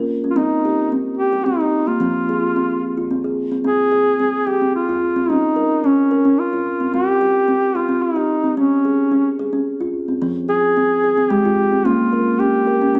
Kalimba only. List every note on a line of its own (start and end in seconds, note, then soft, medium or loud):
0.00 0.23 A#4 medium
0.24 0.37 C#4 medium
0.36 0.91 C4 medium
0.65 0.92 G4 medium
0.92 1.19 C4 medium
1.33 1.46 G4 medium
1.46 1.60 C4 medium
1.61 1.88 G4 medium
1.87 2.01 A#3 medium
2.00 2.84 F3 medium
2.00 2.28 C4 medium
2.29 2.56 G#4 medium
2.56 2.83 C4 medium
2.97 3.11 F4 medium
3.11 3.24 C4 medium
3.24 3.52 G#4 medium
3.52 3.63 C4 medium
3.64 3.92 C4 medium
3.92 4.19 G#4 medium
4.20 4.47 C4 medium
4.47 4.61 G#4 medium
4.62 4.89 C4 medium
4.89 5.16 F4 medium
5.16 5.29 C4 medium
5.30 5.57 C#4 medium
5.56 5.84 A#4 medium
5.84 6.11 C#4 medium
6.11 6.25 A#4 medium
6.25 6.52 C#4 medium
6.53 6.80 F4 medium
6.80 6.93 C4 medium
6.94 7.21 C4 medium
7.21 7.48 G4 medium
7.48 7.75 C4 medium
7.75 7.89 G4 medium
7.89 8.16 C4 medium
8.16 8.44 G4 medium
8.44 8.57 C4 medium
8.57 8.85 C#4 medium
8.85 9.12 G#4 medium
9.11 9.39 C#4 medium
9.39 9.53 G#4 medium
9.53 9.81 C#4 medium
9.81 10.08 F4 medium
10.08 10.20 C4 medium
10.21 11.05 F3 medium
10.21 10.49 C4 medium
10.49 10.76 G#4 medium
10.77 11.04 C4 medium
11.04 11.18 G#4 medium
11.18 11.45 C4 medium
11.30 11.72 G#3 medium
11.45 11.72 F4 medium
11.72 11.85 C4 medium
11.85 12.69 A#3 medium
11.85 12.13 C#4 medium
12.13 12.40 A#4 medium
12.40 12.67 C#4 medium
12.67 12.81 A#4 medium
12.82 12.94 C#4 medium
12.95 13.00 C#4 medium